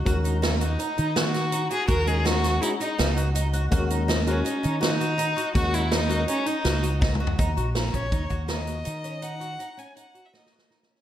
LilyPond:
<<
  \new Staff \with { instrumentName = "Violin" } { \time 5/4 \key ees \minor \tempo 4 = 164 r4. ees'4. ges'4. aes'8 | bes'8 aes'8 ges'4 fes'8 ees'4 r4. | r4. des'4. ees'2 | ges'8 fes'8 ees'4 des'8 ees'4. r4 |
r4. des''4 r8 ees''2 | ges''4. aes''8 ges''8. fes''16 ees''4. r8 | }
  \new Staff \with { instrumentName = "Tine electric piano" } { \time 5/4 \key ees \minor <aes des' ges' bes'>4. r2. r8 | r8 <aes des' ges' bes'>4. <aes des' ges' aes'>8 r2 r8 | <aes des' ges' bes'>4. <aes des' ges' bes'>8 r2. | <aes des' ges' bes'>8 r4 <aes des' ges' bes'>8 r2. |
r1 r4 | r1 r4 | }
  \new Staff \with { instrumentName = "Twelve-string acoustic guitar" } { \time 5/4 \key ees \minor ges'8 ees'8 ees'8 ges'8 ees'8 ees'8 ges'8 ges'8 ees'8 ges'8 | ges'8 ees'8 ees'8 ges'8 ees'8 ees'8 ges'8 ges'8 ees'8 ges'8 | ges'8 ees'8 ees'8 ges'8 ees'8 ees'8 ges'8 ges'8 ees'8 ges'8 | ges'8 ees'8 ees'8 ges'8 ees'8 ees'8 ges'8 ges'8 ees'8 ges'8 |
ees'8 ges'8 ees'8 des'8 ees'8 ges'8 ees'8 ges'8 ees'8 des'8 | ees'8 ges'8 ees'8 des'8 ees'8 ges'8 ees'8 ges'8 ees'8 des'8 | }
  \new Staff \with { instrumentName = "Fretless electric bass" } { \clef bass \time 5/4 \key ees \minor ees,2 r8 ees2 r8 | ees,2 r4 des,2 | ees,2 r8 ees2 r8 | ees,2 r4 des,2 |
ees,8 bes,,4 bes,,8 ees,8 ees,4. ees4~ | ees4 r1 | }
  \new DrumStaff \with { instrumentName = "Drums" } \drummode { \time 5/4 <hh bd>8 hh8 <hh sn>8 hh8 hh8 hh8 <hh sn>8 <hh sn>8 hh8 hh8 | <hh bd>8 hh8 <hh sn>8 <hh sn>8 hh8 hh8 <hh sn>8 hh8 hh8 hh8 | <hh bd>8 hh8 <hh sn>8 hh8 hh8 hh8 <hh sn>8 hh8 hh8 hh8 | <hh bd>8 hh8 <hh sn>8 hh8 hh8 hh8 <hh sn>8 hh8 \tuplet 3/2 { <bd sn>8 toml8 tomfh8 } |
<hh bd>8 hh8 <hh sn>8 <hh bd>8 <hh bd>8 <hh bd>8 <hh sn>8 hh8 hh8 hh8 | hh8 hh8 hh8 hh8 hh8 hh8 \tuplet 3/2 { sn8 sn8 sn8 sn8 sn8 sn8 } | }
>>